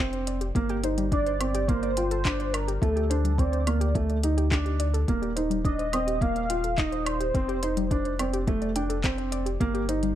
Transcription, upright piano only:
0.00 C4
0.56 A#3
0.83 D#4
1.12 D4
1.41 C4
1.69 A#3
1.98 F4
2.26 D4
2.82 A3
3.10 D4
3.39 C4
3.67 A#3
3.95 A3
4.24 D#4
4.52 D4
5.09 A#3
5.37 D#4
5.65 D4
5.94 C4
6.22 A#3
6.50 F4
6.78 D#4
7.35 C4
7.63 D#4
7.92 D4
8.19 C4
8.48 A3
8.76 D4
9.04 C4
9.61 A#3
9.89 D#4

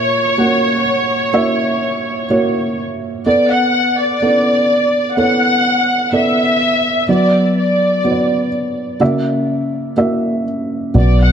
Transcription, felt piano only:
Already playing: A#2 A#3 F#4 E5
0.38 A#3 F#4 F#5
1.33 A#3 F#4 E5
2.30 A#3 F#4 C#5
3.26 B3 A4 D5
4.22 B3 A4 D5
5.17 B3 A4 C#5
6.12 B3 A4 D5
7.09 F#3 B3 F#4 D5
8.04 B3 F#4 C#5
8.12 D5
9.00 C#3 A#3 F#4 E5
9.97 A#3 F#4 E5
10.94 B2 F#3 B3 F#4 D5

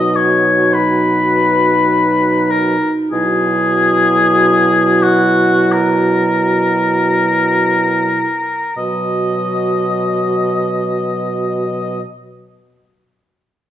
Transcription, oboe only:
Already playing: D#5
0.16 C#5
0.73 B4
2.50 A#4
3.12 G#4
5.02 F#4
5.72 A#4
8.76 D#5

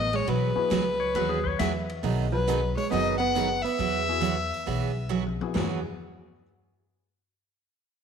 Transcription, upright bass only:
Already playing: A1
0.27 B1
0.56 muted upright bass stroke
0.71 C#2
1.15 D#2
1.59 E2
2.03 B1
2.91 F#1
3.80 E2
4.68 B1
5.55 E2

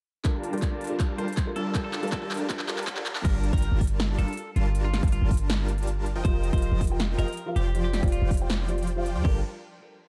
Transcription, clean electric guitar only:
0.25 D5
0.53 D5
1.18 C5
1.56 A4
1.84 A4
2.12 A4
3.25 A#4
3.53 A#4
4.19 A4
4.56 F4
4.84 F4
5.12 F4
6.25 C5
6.53 C5
7.18 A#4
7.56 G4
7.84 G4
8.12 F4
9.25 G4

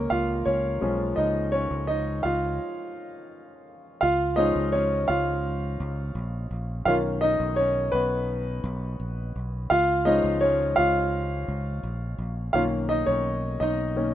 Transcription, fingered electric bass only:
0.11 C#2
0.46 C#2
0.82 B1
1.18 C#2
1.71 C#2
2.25 C#2
4.03 C#2
4.56 C#2
5.09 C#2
5.80 C#2
6.15 A#1
6.51 A#1
6.86 B1
7.40 B1
7.93 B1
8.64 B1
9.00 A#1
9.36 B1
9.71 C#2
10.24 C#2
10.78 C#2
11.48 C#2
11.83 A#1
12.18 A#1
12.54 B1
13.08 B1
13.61 B1

